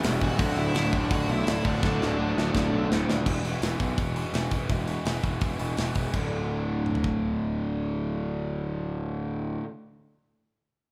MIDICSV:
0, 0, Header, 1, 6, 480
1, 0, Start_track
1, 0, Key_signature, 2, "major"
1, 0, Tempo, 359281
1, 526, Time_signature, 4, 2, 24, 8
1, 14585, End_track
2, 0, Start_track
2, 0, Title_t, "Lead electric guitar"
2, 0, Program_c, 0, 29
2, 314, Note_on_c, 0, 66, 92
2, 317, Note_on_c, 0, 78, 98
2, 748, Note_off_c, 0, 66, 0
2, 768, Note_off_c, 0, 78, 0
2, 768, Note_on_c, 0, 64, 83
2, 773, Note_on_c, 0, 76, 105
2, 1212, Note_off_c, 0, 64, 0
2, 1262, Note_off_c, 0, 76, 0
2, 1280, Note_on_c, 0, 62, 70
2, 1283, Note_on_c, 0, 74, 82
2, 1482, Note_on_c, 0, 66, 78
2, 1486, Note_off_c, 0, 62, 0
2, 1491, Note_on_c, 0, 78, 104
2, 1507, Note_off_c, 0, 74, 0
2, 1705, Note_off_c, 0, 66, 0
2, 1733, Note_off_c, 0, 78, 0
2, 1758, Note_on_c, 0, 64, 71
2, 1767, Note_on_c, 0, 76, 96
2, 2186, Note_off_c, 0, 64, 0
2, 2225, Note_on_c, 0, 62, 70
2, 2233, Note_on_c, 0, 74, 75
2, 2237, Note_off_c, 0, 76, 0
2, 3835, Note_off_c, 0, 62, 0
2, 3837, Note_off_c, 0, 74, 0
2, 14585, End_track
3, 0, Start_track
3, 0, Title_t, "Overdriven electric guitar"
3, 0, Program_c, 1, 29
3, 0, Note_on_c, 1, 40, 93
3, 0, Note_on_c, 1, 47, 109
3, 0, Note_on_c, 1, 52, 92
3, 0, Note_on_c, 1, 55, 108
3, 0, Note_on_c, 1, 59, 99
3, 0, Note_on_c, 1, 64, 104
3, 489, Note_off_c, 1, 40, 0
3, 495, Note_on_c, 1, 38, 90
3, 503, Note_off_c, 1, 47, 0
3, 508, Note_on_c, 1, 45, 104
3, 515, Note_off_c, 1, 52, 0
3, 521, Note_off_c, 1, 55, 0
3, 522, Note_on_c, 1, 50, 99
3, 526, Note_off_c, 1, 59, 0
3, 529, Note_off_c, 1, 64, 0
3, 538, Note_on_c, 1, 57, 98
3, 542, Note_on_c, 1, 66, 108
3, 2405, Note_off_c, 1, 38, 0
3, 2416, Note_off_c, 1, 45, 0
3, 2421, Note_on_c, 1, 38, 100
3, 2423, Note_off_c, 1, 50, 0
3, 2431, Note_off_c, 1, 57, 0
3, 2433, Note_off_c, 1, 66, 0
3, 2436, Note_on_c, 1, 45, 89
3, 2448, Note_on_c, 1, 50, 99
3, 2461, Note_on_c, 1, 57, 94
3, 2471, Note_on_c, 1, 66, 106
3, 4332, Note_off_c, 1, 38, 0
3, 4339, Note_off_c, 1, 45, 0
3, 4345, Note_off_c, 1, 50, 0
3, 4351, Note_off_c, 1, 57, 0
3, 4357, Note_off_c, 1, 66, 0
3, 14585, End_track
4, 0, Start_track
4, 0, Title_t, "Overdriven electric guitar"
4, 0, Program_c, 2, 29
4, 41, Note_on_c, 2, 40, 98
4, 52, Note_on_c, 2, 47, 94
4, 58, Note_on_c, 2, 52, 102
4, 264, Note_off_c, 2, 40, 0
4, 271, Note_off_c, 2, 47, 0
4, 273, Note_off_c, 2, 52, 0
4, 280, Note_on_c, 2, 40, 98
4, 287, Note_on_c, 2, 47, 95
4, 289, Note_on_c, 2, 52, 99
4, 500, Note_off_c, 2, 40, 0
4, 506, Note_off_c, 2, 47, 0
4, 506, Note_on_c, 2, 38, 111
4, 511, Note_on_c, 2, 45, 108
4, 513, Note_off_c, 2, 52, 0
4, 527, Note_on_c, 2, 50, 125
4, 995, Note_off_c, 2, 45, 0
4, 1001, Note_off_c, 2, 38, 0
4, 1005, Note_off_c, 2, 50, 0
4, 1007, Note_on_c, 2, 38, 84
4, 1011, Note_on_c, 2, 45, 83
4, 1011, Note_on_c, 2, 50, 89
4, 1224, Note_off_c, 2, 45, 0
4, 1234, Note_off_c, 2, 38, 0
4, 1239, Note_on_c, 2, 38, 88
4, 1240, Note_on_c, 2, 45, 100
4, 1242, Note_off_c, 2, 50, 0
4, 1247, Note_on_c, 2, 50, 102
4, 1468, Note_off_c, 2, 38, 0
4, 1475, Note_off_c, 2, 45, 0
4, 1482, Note_off_c, 2, 50, 0
4, 1484, Note_on_c, 2, 38, 101
4, 1491, Note_on_c, 2, 45, 105
4, 1498, Note_on_c, 2, 50, 108
4, 1949, Note_off_c, 2, 38, 0
4, 1954, Note_off_c, 2, 45, 0
4, 1965, Note_on_c, 2, 38, 87
4, 1966, Note_off_c, 2, 50, 0
4, 1970, Note_on_c, 2, 45, 97
4, 1982, Note_on_c, 2, 50, 102
4, 2185, Note_off_c, 2, 38, 0
4, 2194, Note_off_c, 2, 45, 0
4, 2194, Note_off_c, 2, 50, 0
4, 2201, Note_on_c, 2, 38, 93
4, 2210, Note_on_c, 2, 45, 103
4, 2210, Note_on_c, 2, 50, 104
4, 2426, Note_off_c, 2, 38, 0
4, 2426, Note_off_c, 2, 45, 0
4, 2430, Note_off_c, 2, 50, 0
4, 2440, Note_on_c, 2, 38, 109
4, 2442, Note_on_c, 2, 45, 121
4, 2451, Note_on_c, 2, 50, 127
4, 2907, Note_off_c, 2, 38, 0
4, 2916, Note_off_c, 2, 45, 0
4, 2923, Note_off_c, 2, 50, 0
4, 2923, Note_on_c, 2, 38, 81
4, 2932, Note_on_c, 2, 45, 86
4, 2939, Note_on_c, 2, 50, 89
4, 3134, Note_off_c, 2, 38, 0
4, 3144, Note_off_c, 2, 45, 0
4, 3146, Note_off_c, 2, 50, 0
4, 3150, Note_on_c, 2, 38, 94
4, 3160, Note_on_c, 2, 45, 85
4, 3162, Note_on_c, 2, 50, 97
4, 3367, Note_off_c, 2, 38, 0
4, 3379, Note_off_c, 2, 50, 0
4, 3382, Note_off_c, 2, 45, 0
4, 3383, Note_on_c, 2, 38, 95
4, 3395, Note_on_c, 2, 50, 117
4, 3398, Note_on_c, 2, 45, 96
4, 3868, Note_off_c, 2, 38, 0
4, 3869, Note_off_c, 2, 45, 0
4, 3876, Note_off_c, 2, 50, 0
4, 3884, Note_on_c, 2, 38, 90
4, 3885, Note_on_c, 2, 45, 84
4, 3892, Note_on_c, 2, 50, 93
4, 4101, Note_off_c, 2, 38, 0
4, 4111, Note_off_c, 2, 45, 0
4, 4113, Note_off_c, 2, 50, 0
4, 4117, Note_on_c, 2, 38, 98
4, 4127, Note_on_c, 2, 45, 93
4, 4129, Note_on_c, 2, 50, 103
4, 4342, Note_off_c, 2, 38, 0
4, 4347, Note_off_c, 2, 45, 0
4, 4348, Note_off_c, 2, 50, 0
4, 4350, Note_on_c, 2, 40, 94
4, 4361, Note_on_c, 2, 47, 103
4, 4370, Note_on_c, 2, 52, 108
4, 4599, Note_off_c, 2, 40, 0
4, 4599, Note_off_c, 2, 47, 0
4, 4604, Note_on_c, 2, 40, 89
4, 4609, Note_off_c, 2, 52, 0
4, 4614, Note_on_c, 2, 52, 108
4, 4615, Note_on_c, 2, 47, 94
4, 4827, Note_off_c, 2, 40, 0
4, 4832, Note_on_c, 2, 40, 96
4, 4833, Note_off_c, 2, 47, 0
4, 4848, Note_off_c, 2, 52, 0
4, 4849, Note_on_c, 2, 47, 102
4, 4854, Note_on_c, 2, 52, 100
4, 5070, Note_off_c, 2, 40, 0
4, 5071, Note_off_c, 2, 47, 0
4, 5075, Note_on_c, 2, 40, 82
4, 5087, Note_off_c, 2, 52, 0
4, 5087, Note_on_c, 2, 47, 88
4, 5092, Note_on_c, 2, 52, 90
4, 5301, Note_off_c, 2, 40, 0
4, 5302, Note_off_c, 2, 47, 0
4, 5310, Note_off_c, 2, 52, 0
4, 5317, Note_on_c, 2, 40, 93
4, 5318, Note_on_c, 2, 47, 105
4, 5326, Note_on_c, 2, 52, 108
4, 5528, Note_off_c, 2, 40, 0
4, 5536, Note_off_c, 2, 47, 0
4, 5543, Note_off_c, 2, 52, 0
4, 5544, Note_on_c, 2, 40, 80
4, 5552, Note_on_c, 2, 47, 88
4, 5559, Note_on_c, 2, 52, 92
4, 5770, Note_off_c, 2, 40, 0
4, 5779, Note_off_c, 2, 47, 0
4, 5779, Note_off_c, 2, 52, 0
4, 5786, Note_on_c, 2, 40, 96
4, 5795, Note_on_c, 2, 47, 96
4, 5795, Note_on_c, 2, 52, 98
4, 6016, Note_off_c, 2, 40, 0
4, 6017, Note_off_c, 2, 47, 0
4, 6028, Note_off_c, 2, 52, 0
4, 6032, Note_on_c, 2, 40, 77
4, 6033, Note_on_c, 2, 47, 91
4, 6044, Note_on_c, 2, 52, 88
4, 6264, Note_off_c, 2, 40, 0
4, 6268, Note_off_c, 2, 47, 0
4, 6272, Note_off_c, 2, 52, 0
4, 6280, Note_on_c, 2, 40, 100
4, 6284, Note_on_c, 2, 47, 107
4, 6288, Note_on_c, 2, 52, 106
4, 6498, Note_off_c, 2, 40, 0
4, 6511, Note_off_c, 2, 47, 0
4, 6514, Note_on_c, 2, 40, 81
4, 6515, Note_off_c, 2, 52, 0
4, 6527, Note_on_c, 2, 47, 94
4, 6531, Note_on_c, 2, 52, 96
4, 6734, Note_off_c, 2, 40, 0
4, 6747, Note_off_c, 2, 47, 0
4, 6748, Note_off_c, 2, 52, 0
4, 6750, Note_on_c, 2, 40, 87
4, 6763, Note_on_c, 2, 47, 101
4, 6764, Note_on_c, 2, 52, 101
4, 6975, Note_off_c, 2, 40, 0
4, 6986, Note_off_c, 2, 47, 0
4, 6988, Note_off_c, 2, 52, 0
4, 6991, Note_on_c, 2, 40, 88
4, 7002, Note_on_c, 2, 47, 96
4, 7004, Note_on_c, 2, 52, 80
4, 7212, Note_off_c, 2, 40, 0
4, 7215, Note_off_c, 2, 47, 0
4, 7220, Note_off_c, 2, 52, 0
4, 7228, Note_on_c, 2, 40, 86
4, 7231, Note_on_c, 2, 47, 88
4, 7236, Note_on_c, 2, 52, 98
4, 7449, Note_off_c, 2, 40, 0
4, 7461, Note_off_c, 2, 47, 0
4, 7465, Note_off_c, 2, 52, 0
4, 7465, Note_on_c, 2, 40, 77
4, 7477, Note_on_c, 2, 47, 84
4, 7481, Note_on_c, 2, 52, 81
4, 7683, Note_off_c, 2, 40, 0
4, 7692, Note_off_c, 2, 47, 0
4, 7699, Note_on_c, 2, 40, 90
4, 7704, Note_off_c, 2, 52, 0
4, 7708, Note_on_c, 2, 47, 92
4, 7720, Note_on_c, 2, 52, 94
4, 7938, Note_off_c, 2, 40, 0
4, 7944, Note_off_c, 2, 47, 0
4, 7950, Note_off_c, 2, 52, 0
4, 7954, Note_on_c, 2, 40, 79
4, 7960, Note_on_c, 2, 47, 80
4, 7966, Note_on_c, 2, 52, 82
4, 8179, Note_off_c, 2, 40, 0
4, 8185, Note_off_c, 2, 47, 0
4, 8185, Note_on_c, 2, 38, 98
4, 8188, Note_off_c, 2, 52, 0
4, 8220, Note_on_c, 2, 45, 106
4, 8238, Note_on_c, 2, 50, 102
4, 12861, Note_off_c, 2, 38, 0
4, 12896, Note_off_c, 2, 45, 0
4, 12914, Note_off_c, 2, 50, 0
4, 14585, End_track
5, 0, Start_track
5, 0, Title_t, "Picked electric bass"
5, 0, Program_c, 3, 34
5, 60, Note_on_c, 3, 28, 97
5, 230, Note_off_c, 3, 28, 0
5, 288, Note_on_c, 3, 28, 88
5, 462, Note_off_c, 3, 28, 0
5, 521, Note_on_c, 3, 26, 99
5, 697, Note_off_c, 3, 26, 0
5, 760, Note_on_c, 3, 26, 94
5, 936, Note_off_c, 3, 26, 0
5, 999, Note_on_c, 3, 26, 90
5, 1175, Note_off_c, 3, 26, 0
5, 1246, Note_on_c, 3, 26, 96
5, 1419, Note_off_c, 3, 26, 0
5, 1481, Note_on_c, 3, 26, 97
5, 1655, Note_off_c, 3, 26, 0
5, 1713, Note_on_c, 3, 35, 98
5, 1890, Note_off_c, 3, 35, 0
5, 1962, Note_on_c, 3, 26, 101
5, 2135, Note_off_c, 3, 26, 0
5, 2204, Note_on_c, 3, 26, 87
5, 2443, Note_off_c, 3, 26, 0
5, 2448, Note_on_c, 3, 26, 103
5, 2619, Note_off_c, 3, 26, 0
5, 2692, Note_on_c, 3, 26, 93
5, 2861, Note_off_c, 3, 26, 0
5, 2930, Note_on_c, 3, 26, 100
5, 3099, Note_off_c, 3, 26, 0
5, 3163, Note_on_c, 3, 26, 89
5, 3335, Note_off_c, 3, 26, 0
5, 3403, Note_on_c, 3, 26, 95
5, 3575, Note_off_c, 3, 26, 0
5, 3633, Note_on_c, 3, 35, 85
5, 3808, Note_off_c, 3, 35, 0
5, 3883, Note_on_c, 3, 26, 99
5, 4055, Note_off_c, 3, 26, 0
5, 4122, Note_on_c, 3, 27, 78
5, 4294, Note_off_c, 3, 27, 0
5, 4356, Note_on_c, 3, 28, 99
5, 4518, Note_off_c, 3, 28, 0
5, 4582, Note_on_c, 3, 28, 83
5, 4749, Note_off_c, 3, 28, 0
5, 4830, Note_on_c, 3, 28, 90
5, 4994, Note_off_c, 3, 28, 0
5, 5077, Note_on_c, 3, 35, 82
5, 5239, Note_off_c, 3, 35, 0
5, 5314, Note_on_c, 3, 28, 85
5, 5640, Note_off_c, 3, 28, 0
5, 5794, Note_on_c, 3, 28, 92
5, 5957, Note_off_c, 3, 28, 0
5, 6032, Note_on_c, 3, 28, 78
5, 6196, Note_off_c, 3, 28, 0
5, 6275, Note_on_c, 3, 28, 94
5, 6601, Note_off_c, 3, 28, 0
5, 6751, Note_on_c, 3, 28, 88
5, 6916, Note_off_c, 3, 28, 0
5, 6993, Note_on_c, 3, 28, 79
5, 7157, Note_off_c, 3, 28, 0
5, 7234, Note_on_c, 3, 28, 81
5, 7398, Note_off_c, 3, 28, 0
5, 7479, Note_on_c, 3, 28, 88
5, 7641, Note_off_c, 3, 28, 0
5, 7714, Note_on_c, 3, 28, 87
5, 7878, Note_off_c, 3, 28, 0
5, 7961, Note_on_c, 3, 28, 73
5, 8123, Note_off_c, 3, 28, 0
5, 8202, Note_on_c, 3, 26, 85
5, 12777, Note_off_c, 3, 26, 0
5, 14585, End_track
6, 0, Start_track
6, 0, Title_t, "Drums"
6, 45, Note_on_c, 9, 46, 65
6, 61, Note_on_c, 9, 38, 114
6, 179, Note_off_c, 9, 46, 0
6, 195, Note_off_c, 9, 38, 0
6, 287, Note_on_c, 9, 36, 96
6, 420, Note_off_c, 9, 36, 0
6, 521, Note_on_c, 9, 46, 66
6, 524, Note_on_c, 9, 36, 120
6, 654, Note_off_c, 9, 46, 0
6, 658, Note_off_c, 9, 36, 0
6, 998, Note_on_c, 9, 46, 59
6, 1014, Note_on_c, 9, 38, 108
6, 1131, Note_off_c, 9, 46, 0
6, 1147, Note_off_c, 9, 38, 0
6, 1241, Note_on_c, 9, 36, 92
6, 1374, Note_off_c, 9, 36, 0
6, 1480, Note_on_c, 9, 36, 121
6, 1480, Note_on_c, 9, 46, 66
6, 1614, Note_off_c, 9, 36, 0
6, 1614, Note_off_c, 9, 46, 0
6, 1964, Note_on_c, 9, 46, 65
6, 1980, Note_on_c, 9, 38, 114
6, 2097, Note_off_c, 9, 46, 0
6, 2113, Note_off_c, 9, 38, 0
6, 2203, Note_on_c, 9, 36, 96
6, 2337, Note_off_c, 9, 36, 0
6, 2445, Note_on_c, 9, 36, 118
6, 2462, Note_on_c, 9, 38, 69
6, 2579, Note_off_c, 9, 36, 0
6, 2595, Note_off_c, 9, 38, 0
6, 2703, Note_on_c, 9, 38, 69
6, 2836, Note_off_c, 9, 38, 0
6, 3183, Note_on_c, 9, 38, 79
6, 3316, Note_off_c, 9, 38, 0
6, 3402, Note_on_c, 9, 36, 117
6, 3417, Note_on_c, 9, 38, 93
6, 3535, Note_off_c, 9, 36, 0
6, 3551, Note_off_c, 9, 38, 0
6, 3899, Note_on_c, 9, 38, 104
6, 4032, Note_off_c, 9, 38, 0
6, 4136, Note_on_c, 9, 38, 108
6, 4269, Note_off_c, 9, 38, 0
6, 4359, Note_on_c, 9, 36, 111
6, 4359, Note_on_c, 9, 49, 111
6, 4492, Note_off_c, 9, 36, 0
6, 4493, Note_off_c, 9, 49, 0
6, 4604, Note_on_c, 9, 46, 54
6, 4738, Note_off_c, 9, 46, 0
6, 4838, Note_on_c, 9, 46, 67
6, 4854, Note_on_c, 9, 38, 107
6, 4972, Note_off_c, 9, 46, 0
6, 4988, Note_off_c, 9, 38, 0
6, 5076, Note_on_c, 9, 36, 80
6, 5077, Note_on_c, 9, 46, 52
6, 5210, Note_off_c, 9, 36, 0
6, 5210, Note_off_c, 9, 46, 0
6, 5316, Note_on_c, 9, 36, 101
6, 5322, Note_on_c, 9, 46, 69
6, 5450, Note_off_c, 9, 36, 0
6, 5455, Note_off_c, 9, 46, 0
6, 5559, Note_on_c, 9, 46, 56
6, 5692, Note_off_c, 9, 46, 0
6, 5797, Note_on_c, 9, 46, 73
6, 5813, Note_on_c, 9, 38, 104
6, 5931, Note_off_c, 9, 46, 0
6, 5947, Note_off_c, 9, 38, 0
6, 6029, Note_on_c, 9, 46, 60
6, 6032, Note_on_c, 9, 36, 91
6, 6162, Note_off_c, 9, 46, 0
6, 6166, Note_off_c, 9, 36, 0
6, 6272, Note_on_c, 9, 46, 76
6, 6274, Note_on_c, 9, 36, 107
6, 6406, Note_off_c, 9, 46, 0
6, 6407, Note_off_c, 9, 36, 0
6, 6514, Note_on_c, 9, 46, 57
6, 6647, Note_off_c, 9, 46, 0
6, 6753, Note_on_c, 9, 46, 74
6, 6769, Note_on_c, 9, 38, 106
6, 6887, Note_off_c, 9, 46, 0
6, 6903, Note_off_c, 9, 38, 0
6, 6991, Note_on_c, 9, 46, 57
6, 6995, Note_on_c, 9, 36, 82
6, 7125, Note_off_c, 9, 46, 0
6, 7129, Note_off_c, 9, 36, 0
6, 7229, Note_on_c, 9, 46, 74
6, 7236, Note_on_c, 9, 36, 110
6, 7363, Note_off_c, 9, 46, 0
6, 7369, Note_off_c, 9, 36, 0
6, 7473, Note_on_c, 9, 46, 55
6, 7606, Note_off_c, 9, 46, 0
6, 7713, Note_on_c, 9, 46, 72
6, 7729, Note_on_c, 9, 38, 101
6, 7846, Note_off_c, 9, 46, 0
6, 7863, Note_off_c, 9, 38, 0
6, 7949, Note_on_c, 9, 46, 60
6, 7957, Note_on_c, 9, 36, 83
6, 8082, Note_off_c, 9, 46, 0
6, 8091, Note_off_c, 9, 36, 0
6, 8199, Note_on_c, 9, 49, 81
6, 8200, Note_on_c, 9, 36, 104
6, 8333, Note_off_c, 9, 36, 0
6, 8333, Note_off_c, 9, 49, 0
6, 9166, Note_on_c, 9, 47, 55
6, 9287, Note_on_c, 9, 43, 73
6, 9300, Note_off_c, 9, 47, 0
6, 9408, Note_on_c, 9, 36, 85
6, 9421, Note_off_c, 9, 43, 0
6, 9541, Note_off_c, 9, 36, 0
6, 14585, End_track
0, 0, End_of_file